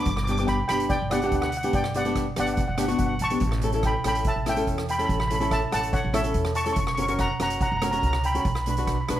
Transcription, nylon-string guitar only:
0.28 0.35 B3 medium
0.28 0.35 D4 medium
0.28 0.35 G4 medium
0.39 0.58 B3 medium
0.39 0.58 D4 medium
0.39 0.58 G4 medium
0.70 0.95 B3 medium
0.70 0.95 D4 medium
0.70 0.96 G4 medium
1.11 1.18 B3 medium
1.11 1.18 D4 medium
1.11 1.18 G4 medium
1.22 1.48 B3 medium
1.22 1.47 D4 medium
1.22 1.48 G4 medium
1.63 1.83 B3 medium
1.63 1.83 D4 medium
1.63 1.83 G4 medium
1.95 2.02 B3 medium
1.95 2.02 D4 medium
1.95 2.01 G4 medium
2.05 2.24 B3 medium
2.05 2.25 D4 medium
2.05 2.24 G4 medium
2.36 2.62 B3 medium
2.36 2.62 D4 medium
2.36 2.62 G4 medium
2.77 2.84 B3 medium
2.77 2.85 D4 medium
2.77 2.85 G4 medium
2.88 3.14 B3 medium
2.88 3.14 D4 medium
2.88 3.14 F#4 medium
3.31 3.41 B3 medium
3.31 3.41 D4 medium
3.31 3.42 G4 medium
3.63 3.69 C#4 medium
3.63 3.69 E4 medium
3.63 3.69 A4 medium
3.73 3.92 C#4 medium
3.73 3.92 E4 medium
3.73 3.92 A4 medium
4.05 4.30 C#4 medium
4.05 4.30 E4 medium
4.05 4.30 A4 medium
4.46 4.53 C#4 medium
4.46 4.53 E4 medium
4.46 4.53 A4 medium
4.56 4.82 C#4 medium
4.56 4.82 E4 medium
4.56 4.82 A4 medium
4.99 5.18 C#4 medium
4.99 5.18 E4 medium
4.99 5.18 A4 medium
5.30 5.37 C#4 medium
5.30 5.37 E4 medium
5.30 5.37 A4 medium
5.40 5.59 C#4 medium
5.40 5.60 E4 medium
5.40 5.60 A4 medium
5.71 5.97 C#4 medium
5.71 5.97 E4 medium
5.71 5.97 A4 medium
6.13 6.20 C#4 medium
6.13 6.20 E4 medium
6.13 6.21 A4 medium
6.24 6.50 C#4 medium
6.24 6.50 E4 medium
6.24 6.50 A4 medium
6.66 6.77 C#4 medium
6.66 6.77 E4 medium
6.66 6.77 A4 medium
6.98 7.05 C#4 medium
6.98 7.05 F#4 medium
6.98 7.05 A#4 medium
7.08 7.28 C#4 medium
7.08 7.28 F#4 medium
7.08 7.28 A#4 medium
7.40 7.65 C#4 medium
7.40 7.66 F#4 medium
7.40 7.66 A#4 medium
7.82 7.88 C#4 medium
7.82 7.89 F#4 medium
7.82 7.89 A#4 medium
7.92 8.18 C#4 medium
7.92 8.18 F#4 medium
7.92 8.18 A#4 medium
8.34 8.45 C#4 medium
8.34 8.45 F#4 medium
8.34 8.45 A#4 medium
8.67 8.73 D4 medium
8.67 8.73 F#4 medium
8.67 8.74 B4 medium
8.78 8.97 D4 medium
8.78 8.97 F#4 medium
8.78 8.97 B4 medium
9.09 9.20 D4 medium
9.09 9.20 F#4 medium
9.09 9.20 B4 medium

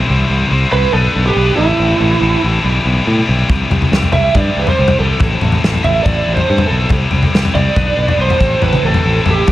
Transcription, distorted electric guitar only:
0.06 0.50 C3 medium
0.06 0.50 E3 medium
0.06 0.31 G3 medium
0.06 0.29 C4 loud
0.06 0.28 E4 loud
0.06 0.27 C5 medium
0.28 0.50 G3 medium
0.28 0.50 C4 medium
0.28 0.51 E4 medium
0.28 0.52 C5 medium
0.50 0.73 G3 medium
0.50 0.72 C4 medium
0.50 0.70 E4 medium
0.50 0.70 C5 medium
0.71 0.93 G3 soft
0.71 0.93 C4 medium
0.71 0.92 E4 medium
0.71 0.92 C5 medium
0.93 1.35 B3 medium
0.93 1.36 D4 medium
0.93 1.37 G4 medium
0.93 1.38 B4 medium
1.36 1.56 B3 medium
1.36 1.56 D4 medium
1.36 1.56 G4 medium
1.36 1.55 B4 medium
1.55 1.76 A2 medium
1.55 1.77 E3 medium
1.55 1.77 C4 medium
1.55 1.78 E4 medium
1.55 1.79 A4 medium
1.77 2.21 A2 medium
1.77 2.19 E3 medium
1.77 2.01 C4 medium
1.77 2.01 E4 medium
1.77 1.99 A4 medium
2.00 2.21 C4 medium
2.00 2.22 E4 medium
2.00 2.22 A4 medium
2.20 2.63 E3 medium
2.20 2.44 C4 medium
2.20 2.43 E4 medium
2.20 2.41 A4 medium
2.42 2.64 C4 medium
2.42 2.65 E4 medium
2.42 2.63 A4 medium
2.63 3.28 B2 medium
2.63 3.05 E3 medium
2.63 3.06 G3 medium
2.63 3.07 E4 medium
2.63 3.08 G4 medium
3.06 3.49 E3 medium
3.06 3.29 G3 medium
3.06 3.29 E4 medium
3.06 3.27 G4 medium
3.27 3.50 G3 medium
3.27 3.50 E4 medium
3.27 3.51 G4 medium
3.49 3.92 C3 medium
3.49 3.91 E3 medium
3.49 3.72 G3 medium
3.49 3.71 E4 medium
3.49 3.69 G4 medium
3.69 3.92 G3 medium
3.69 3.92 E4 medium
3.69 3.93 G4 medium
3.91 4.35 E3 medium
3.91 4.16 G3 medium
3.91 4.14 E4 medium
3.91 4.13 G4 medium
4.13 4.35 G3 medium
4.13 4.37 E4 medium
4.13 4.37 G4 medium
4.35 4.99 C3 medium
4.35 4.77 E3 medium
4.35 4.78 G3 medium
4.35 4.79 E4 medium
4.35 4.81 G4 loud
4.78 5.21 E3 medium
4.78 5.01 G3 medium
4.78 5.00 E4 medium
4.78 4.99 G4 medium
4.99 5.21 G3 soft
4.99 5.22 E4 medium
4.99 5.23 G4 medium
5.20 5.63 A2 medium
5.20 5.63 E3 medium
5.20 5.43 C4 medium
5.20 5.42 E4 medium
5.20 5.40 A4 medium
5.41 5.64 C4 medium
5.41 5.64 E4 medium
5.41 5.65 A4 medium
5.64 6.04 E3 medium
5.64 5.86 C4 medium
5.64 5.84 E4 medium
5.64 5.83 A4 medium
5.85 6.05 C4 medium
5.85 6.05 E4 medium
5.85 6.05 A4 medium
6.05 6.69 A2 medium
6.05 6.46 E3 medium
6.05 6.48 C4 medium
6.05 6.48 E4 medium
6.05 6.49 A4 loud
6.48 6.90 E3 medium
6.48 6.70 C4 medium
6.48 6.69 E4 medium
6.48 6.67 A4 medium
6.68 6.90 C4 medium
6.68 6.90 E4 medium
6.68 6.89 A4 medium
6.89 7.33 C3 medium
6.89 7.31 G3 medium
6.89 7.12 C4 medium
6.89 7.11 E4 medium
6.89 7.11 G4 medium
7.11 7.32 C4 soft
7.11 7.32 E4 medium
7.11 7.34 G4 medium
7.31 7.75 G3 medium
7.31 7.56 C4 medium
7.31 7.54 E4 medium
7.31 7.54 G4 medium
7.54 7.75 C4 medium
7.54 7.76 E4 medium
7.54 7.76 G4 medium
7.75 8.16 B3 medium
7.75 8.17 D4 loud
7.75 8.18 G4 medium
7.75 8.19 B4 loud
8.17 8.38 B3 medium
8.17 8.39 D4 medium
8.17 8.39 G4 medium
8.17 8.38 B4 medium
8.39 8.59 A2 medium
8.39 8.59 E3 medium
8.39 8.59 C4 medium
8.39 8.61 E4 medium
8.39 8.61 A4 medium
8.60 9.04 A2 medium
8.60 9.02 E3 medium
8.60 8.83 C4 medium
8.60 8.82 E4 medium
8.60 8.80 A4 medium
8.81 9.03 C4 medium
8.81 9.04 E4 medium
8.81 9.05 A4 medium
9.03 9.46 E3 medium
9.03 9.27 C4 medium
9.03 9.25 E4 medium
9.03 9.24 A4 medium
9.25 9.47 C4 medium
9.25 9.46 E4 medium
9.25 9.46 A4 medium
9.47 9.52 B2 medium
9.47 9.52 E3 medium
9.47 9.52 G3 medium

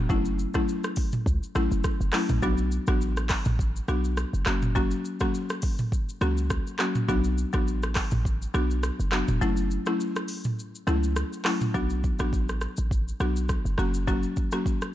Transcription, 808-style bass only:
0.10 0.46 F#1 loud
1.26 1.39 C#2 loud
1.55 1.68 A1 medium
1.72 1.82 F#1 medium
2.01 2.11 F#1 medium
2.30 2.40 A1 medium
2.42 2.79 B1 loud
2.88 3.35 A1 loud
3.46 3.80 A1 medium
3.88 4.25 B1 loud
4.33 4.44 F#1 medium
4.47 4.94 F#1 loud
6.21 6.58 C#2 medium
7.09 7.45 B1 loud
7.54 8.01 A1 medium
8.12 8.46 A1 medium
8.54 8.91 B1 loud
9.00 9.23 F#1 medium
9.29 9.39 E1 loud
9.42 9.78 F#1 loud
10.87 11.24 C#2 medium
11.75 12.11 B1 loud
12.20 12.67 A1 medium
12.78 13.12 A1 medium
13.20 13.57 B1 medium
13.65 13.76 F#1 medium
13.78 14.26 F#1 loud

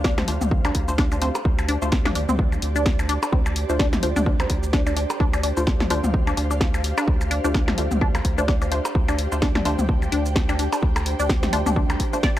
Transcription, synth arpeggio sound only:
0.05 0.10 D4 medium
0.18 0.22 C4 medium
0.65 0.71 D4 loud
0.98 1.01 D4 loud
1.12 1.16 D4 medium
1.22 1.27 C4 medium
1.69 1.76 D4 loud
2.05 2.08 D4 loud
2.15 2.21 D4 medium
2.29 2.33 C4 medium
2.76 2.81 D4 loud
3.09 3.12 D4 loud
3.23 3.26 D4 medium
3.32 3.38 C4 medium
3.79 3.87 D4 loud
4.16 4.19 D4 loud
4.26 4.31 D4 medium
4.40 4.44 C4 medium
4.73 4.78 D4 medium
4.87 4.92 D4 medium
4.97 5.04 D4 medium
5.20 5.23 D4 loud
5.34 5.37 D4 medium
5.43 5.49 D4 medium
5.90 5.98 D4 loud
6.27 6.30 D4 loud
6.37 6.42 D4 medium
6.51 6.55 D4 medium
6.98 7.03 D4 loud
7.31 7.34 D4 loud
7.44 7.48 D4 medium
7.54 7.60 D4 medium
8.01 8.09 D4 loud
8.38 8.40 D4 loud
8.48 8.53 D4 medium
8.61 8.65 D4 medium
9.09 9.14 D4 loud
9.42 9.45 D4 loud
9.55 9.59 D4 medium
9.65 9.71 D4 medium
10.12 10.20 D4 loud
10.49 10.51 D4 loud
10.59 10.64 D4 medium
10.73 10.76 D4 medium
11.20 11.25 D4 loud
11.53 11.56 D4 loud
11.66 11.70 D4 medium
11.76 11.81 D4 medium
12.13 12.19 D4 medium
12.23 12.28 D5 loud

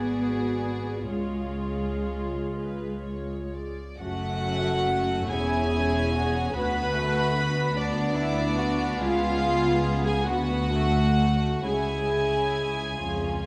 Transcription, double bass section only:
0.00 1.09 G#1 medium
1.09 3.79 C#2 medium
4.01 5.27 F#1 medium
5.30 6.56 E1 medium
6.55 8.96 D2 medium
9.00 10.25 C#2 medium
10.27 11.66 D2 medium
11.66 13.01 C#2 medium
13.03 13.46 C#2 medium

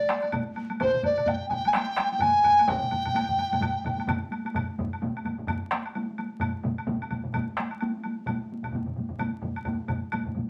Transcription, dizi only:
0.00 0.33 D5 medium
0.81 1.03 C5 medium
1.05 1.30 D5 medium
1.28 1.49 G5 medium
1.49 1.69 G5 loud
1.49 1.54 G#5 medium
1.68 1.75 G#5 medium
1.75 2.10 G5 medium
2.12 2.23 G5 medium
2.22 2.70 G#5 loud
2.68 4.08 G5 loud

